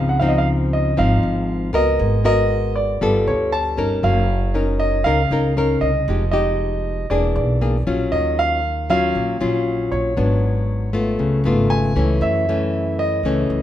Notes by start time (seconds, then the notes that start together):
Already playing: C#2 C#3 F3 C4 D#4
0.09 F#5
0.19 F3 C4 D#4 F5
0.28 D#5
0.38 F5
0.73 D#5
0.97 G#1 G#2 F3 C4 D#4 F5
1.23 G#1
1.73 C#2 B3 F#4 A#4 D#5
1.99 G#1 G#3
2.24 B3 F#4 A#4 D#5
2.76 D5
3.01 G1 G3 B3 F4 A4
3.27 D2 C#5
3.52 A5
3.77 G1 C#4 D#4 A#4
4.03 F#1 F#3 F5
4.54 C#4 D#4 A#4
4.80 D#5
5.04 C#2 C#3 C#4 D#4 A#4 F5
5.31 C#2 C#4 D#4 A#4
5.57 C#4 D#4 A#4
5.81 C2 D#5
6.08 F1 F3 G#3 D#4 G4
6.31 G#3 D#4 G4 D#5
7.10 E1 E3 A#3 D4 G#4 D5
7.36 B1 D5
7.61 A#3 D4 G#4
7.87 A#1 F#3 C#4 F4
8.12 D#2 D#3 D#5
8.39 F5
8.90 F#3 C#4 F4 F5
9.15 A#1 A#2
9.41 A#1 F#3 C#4 F4
9.91 A#1 C#5
10.17 G#1 G#2 F#3 B3 D4
10.93 A3 B3 F4
11.19 C#2 C#3
11.44 G#1 A3 B3 F4
11.70 G#5
11.96 C#2 E3 A3 C#4
12.21 F#2 E5
12.49 E3 A3 C#4
12.99 D#5
13.23 C#2 C#3 E3 A3 C#4
13.50 C#2